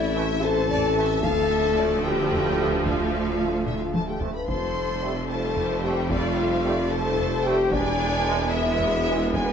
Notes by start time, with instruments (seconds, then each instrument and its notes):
Already playing: double bass section A1, sub bass A1, tuba A1, cello section A2, viola section E3 A3, ambient pad A3 C4 E4 A4, french horn section E4, violin section D5 E5
0.15 trombone section E3 A3, violin section E5
0.42 french horn section A4, violin section C5 A5
0.69 violin section D5, taiko low-mid
0.96 trombone section E3 A3, violin section E5
1.23 sub bass D1, double bass section D2, cello section D2, tuba D2, viola section F3 A3, ambient pad D4 F4, french horn section A4, violin section F5 A5, taiko
1.51 violin section E5
1.76 trombone section F3 A3, violin section D5
2.04 french horn section G4, violin section B4 G5
2.31 taiko low-mid
2.59 trombone section F3 A3
2.85 french horn section F4, violin section A4 F5, taiko
3.40 trombone section F3 A3
3.66 french horn section E4, violin section E5, taiko mid
3.80 french horn section F4, violin section F5
3.93 french horn section A4, violin section A5, taiko high
4.08 french horn section G4, violin section G5
4.20 trombone section F3 A3, french horn section A4, violin section A5, taiko low
4.35 french horn section B4, violin section B5
4.47 double bass section F1, sub bass F1, tuba F1, cello section F2, viola section G3 A3, ambient pad G3 C4 A4, violin section A4 C6, french horn section C5, taiko
5.02 trombone section G3 A3
5.28 french horn section A4, violin section C5 A5
5.56 taiko low-mid
5.83 trombone section G3 A3, french horn section G4, violin section G5
6.10 french horn section F4, violin section D5 F5, taiko
6.37 violin section C5
6.63 trombone section G3 A3, violin section D5
6.91 french horn section A4, violin section C5 A5
7.18 taiko low-mid
7.44 trombone section G3 A3, french horn section G4, violin section G5
7.72 sub bass E1, double bass section E1, tuba E1, cello section E2, viola section G#3 B3, ambient pad G#3 B3 E4 B4, french horn section D4, violin section D5 G#5, taiko
8.26 trombone section E3 G#3
8.53 french horn section E4, violin section E5
8.80 taiko low-mid
9.07 trombone section E3 G#3
9.34 french horn section B3, violin section B4 G#5, taiko